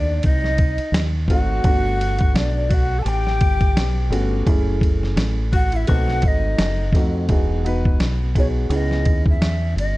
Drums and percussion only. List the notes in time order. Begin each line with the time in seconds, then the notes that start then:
0.23 kick, ride
0.44 snare
0.58 kick, ride
0.78 ride
0.94 snare, hi-hat pedal, ride
1.28 kick, ride
1.64 kick, ride
2.01 ride
2.19 kick, ride
2.36 snare, hi-hat pedal, ride
2.71 kick, ride
3.06 ride
3.27 snare
3.41 kick, ride
3.61 kick, ride
3.77 snare, hi-hat pedal, ride
4.13 ride
4.47 kick, ride
4.81 kick, ride
5.03 snare
5.17 snare, hi-hat pedal, ride
5.53 kick, ride
5.72 ride
5.87 kick, ride
6.08 snare
6.22 kick, ride
6.59 snare, hi-hat pedal, ride
6.93 kick, snare, ride
7.29 kick, ride
7.66 ride
7.85 kick
8.00 snare, hi-hat pedal, ride
8.36 kick, ride
8.71 ride
8.91 snare
9.05 kick, ride
9.26 kick
9.42 snare, hi-hat pedal, ride
9.78 ride